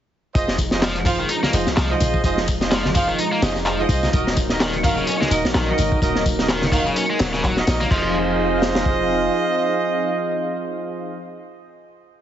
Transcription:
0.35 808-style bass F1, analog synth pad F3 G#3 D#4, horn section F4 G#4 C5 D#5, kick, closed hi-hat, tambourine
0.48 snare
0.58 kick, closed hi-hat, open hi-hat, tambourine
0.71 horn section F4 G#4 C5 D#5, snare, tambourine
0.82 distorted electric guitar F3, snare, clap, closed hi-hat, tambourine
0.96 closed hi-hat
1.05 distorted electric guitar F3, horn section F4 G#4 C5 F5, kick, closed hi-hat, open hi-hat, tambourine, low conga
1.19 distorted electric guitar D#3, tambourine
1.29 distorted electric guitar D#4, closed hi-hat, tambourine
1.43 distorted electric guitar A#3, snare, high conga
1.53 808-style bass F1, horn section F4 G#4 C5 D#5, closed hi-hat, open hi-hat, tambourine
1.67 808-style bass C2, snare, tambourine
1.77 808-style bass C2, distorted electric guitar F3, snare, clap, closed hi-hat, tambourine
1.90 horn section F4 G#4 C5 D#5
2.00 808-style bass A#1, closed hi-hat, open hi-hat, tambourine, high conga
2.14 kick, tambourine
2.24 808-style bass F1, horn section F4 G#4 C5 D#5, kick, closed hi-hat, tambourine
2.37 snare
2.48 kick, closed hi-hat, open hi-hat, tambourine
2.61 horn section F4 G#4 C5 D#5, snare, tambourine
2.71 distorted electric guitar F3, snare, clap, closed hi-hat, tambourine
2.85 snare, high conga
2.95 distorted electric guitar F3, horn section F4 G#4 C5 F5, kick, closed hi-hat, open hi-hat, tambourine, low conga
3.08 distorted electric guitar D#3, tambourine
3.18 distorted electric guitar D#4, closed hi-hat, tambourine
3.32 distorted electric guitar A#3
3.42 808-style bass F1, horn section F4 G#4 C5 D#5, snare, closed hi-hat, open hi-hat, tambourine, high conga
3.55 snare, tambourine
3.66 distorted electric guitar F3, clap, closed hi-hat, tambourine
3.79 horn section F4 G#4 C5 D#5
3.89 808-style bass C2, kick, closed hi-hat, open hi-hat, tambourine
4.03 snare, tambourine, high conga
4.13 808-style bass D#1, analog synth pad F#3 A#3, horn section D#4 F#4 A#4 D#5, kick, closed hi-hat, tambourine
4.27 snare
4.36 kick, closed hi-hat, open hi-hat, tambourine
4.49 horn section D#4 F#4 A#4 D#5, snare, tambourine
4.60 distorted electric guitar D#3, snare, clap, closed hi-hat, tambourine
4.73 closed hi-hat
4.84 distorted electric guitar D#3, horn section D#4 F#4 A#4 F5, kick, closed hi-hat, open hi-hat, tambourine, low conga
4.97 distorted electric guitar C#3, tambourine
5.07 distorted electric guitar C#4, closed hi-hat, tambourine
5.21 distorted electric guitar G#3, snare, high conga
5.31 808-style bass D#1, horn section D#4 F#4 A#4 D#5, closed hi-hat, open hi-hat, tambourine
5.44 808-style bass A#1, snare, tambourine
5.54 808-style bass A#1, distorted electric guitar D#3, snare, clap, closed hi-hat, tambourine
5.68 horn section D#4 F#4 A#4 D#5
5.78 808-style bass G#1, closed hi-hat, open hi-hat, tambourine, high conga
5.92 kick, tambourine
6.02 808-style bass D#1, horn section D#4 F#4 A#4 D#5, kick, closed hi-hat, tambourine
6.15 snare
6.26 kick, closed hi-hat, open hi-hat, tambourine
6.39 horn section D#4 F#4 A#4 D#5, snare, tambourine
6.48 distorted electric guitar D#3, snare, clap, closed hi-hat, tambourine
6.62 snare, high conga
6.72 distorted electric guitar D#3, horn section D#4 F#4 A#4 F5, kick, closed hi-hat, open hi-hat, tambourine, low conga
6.86 distorted electric guitar C#3, tambourine
6.96 distorted electric guitar C#4, closed hi-hat, tambourine
7.10 distorted electric guitar G#3
7.19 808-style bass D#1, distorted electric guitar F#3, snare, closed hi-hat, open hi-hat, tambourine, high conga
7.33 distorted electric guitar C#3, snare, tambourine
7.44 distorted electric guitar F#3, kick, clap, closed hi-hat, tambourine
7.57 horn section D#4 F#4 A#4 D#5, snare
7.67 808-style bass A#1, horn section D#4 F#4 A#4 D#5, snare, closed hi-hat, open hi-hat, tambourine
7.81 distorted electric guitar A#3, closed hi-hat, tambourine, high conga
7.91 808-style bass F1, analog synth pad F3 C4 D#4 G#4 F5, distorted electric guitar F3, horn section F4 G#4 C5 D#5, kick, crash
8.62 snare
8.75 snare
8.86 kick

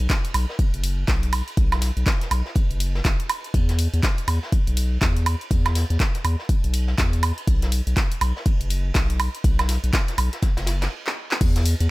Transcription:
0.00 analog synth bass B1, closed hi-hat
0.10 kick, snare, clap, closed hi-hat, ride
0.25 closed hi-hat
0.34 analog synth bass B1, open hi-hat, ride, high woodblock
0.49 snare
0.59 kick, closed hi-hat, ride
0.74 analog synth bass F#1, closed hi-hat
0.84 open hi-hat, ride
1.08 analog synth bass B1, kick, snare, clap, closed hi-hat, ride
1.23 closed hi-hat
1.33 open hi-hat, ride, high woodblock
1.47 closed hi-hat, ride
1.57 analog synth bass B1, kick, closed hi-hat, ride
1.72 snare, closed hi-hat, high woodblock
1.81 snare, open hi-hat, ride
1.97 analog synth bass B1, closed hi-hat
2.06 kick, snare, clap, closed hi-hat, ride
2.21 snare, closed hi-hat
2.31 analog synth bass B1, open hi-hat, ride, high woodblock
2.45 snare
2.55 kick, closed hi-hat, ride
2.71 analog synth bass F#1, closed hi-hat
2.80 open hi-hat, ride
2.95 snare
3.05 analog synth bass F#1, kick, snare, clap, closed hi-hat, ride
3.20 closed hi-hat
3.29 open hi-hat, ride, high woodblock
3.44 closed hi-hat, ride
3.54 analog synth bass E2, kick, closed hi-hat, ride
3.69 snare, closed hi-hat
3.79 open hi-hat, ride
3.94 analog synth bass E2, closed hi-hat, ride
4.03 kick, snare, clap, closed hi-hat, ride
4.18 closed hi-hat
4.27 analog synth bass E2, open hi-hat, ride, high woodblock
4.43 snare
4.52 kick, closed hi-hat, ride
4.67 analog synth bass B1, closed hi-hat
4.77 open hi-hat, ride
5.02 analog synth bass E2, kick, snare, clap, closed hi-hat, ride
5.17 closed hi-hat
5.26 open hi-hat, ride, high woodblock
5.41 closed hi-hat, ride
5.50 analog synth bass E2, kick, closed hi-hat, ride
5.65 snare, closed hi-hat, high woodblock
5.75 snare, open hi-hat, ride
5.90 analog synth bass E2, closed hi-hat
6.00 kick, snare, clap, closed hi-hat
6.15 snare, closed hi-hat
6.24 analog synth bass E2, open hi-hat, ride, high woodblock
6.39 snare
6.49 kick, closed hi-hat, ride
6.64 analog synth bass B1, closed hi-hat
6.73 open hi-hat, ride
6.88 snare
6.98 analog synth bass E2, kick, snare, clap, closed hi-hat, ride
7.13 closed hi-hat
7.23 open hi-hat, ride, high woodblock
7.38 closed hi-hat, ride
7.47 analog synth bass B1, kick, closed hi-hat, ride
7.62 snare, closed hi-hat
7.72 open hi-hat, ride
7.87 analog synth bass B1, closed hi-hat, ride
7.96 kick, snare, clap, closed hi-hat, ride
8.12 closed hi-hat
8.21 analog synth bass B1, open hi-hat, ride, high woodblock
8.36 snare
8.45 kick, closed hi-hat, ride
8.61 analog synth bass F#1, closed hi-hat
8.70 open hi-hat, ride
8.94 analog synth bass B1, kick, snare, clap, closed hi-hat, ride
9.10 closed hi-hat
9.19 open hi-hat, ride, high woodblock
9.34 closed hi-hat, ride
9.44 analog synth bass B1, kick, closed hi-hat, ride
9.59 snare, closed hi-hat, high woodblock
9.69 snare, open hi-hat, ride
9.84 analog synth bass B1, closed hi-hat
9.93 kick, snare, clap, closed hi-hat, ride
10.08 snare, closed hi-hat
10.18 analog synth bass B1, open hi-hat, ride, high woodblock
10.33 snare, closed hi-hat
10.42 kick, snare, closed hi-hat, ride
10.57 analog synth bass F#1, snare, closed hi-hat, ride
10.66 snare, open hi-hat, ride
10.82 snare, clap, closed hi-hat, ride
11.07 clap
11.31 clap
11.41 analog synth bass E2, kick, closed hi-hat, crash, ride
11.56 snare, closed hi-hat
11.66 open hi-hat, ride
11.80 analog synth bass E2, closed hi-hat, ride

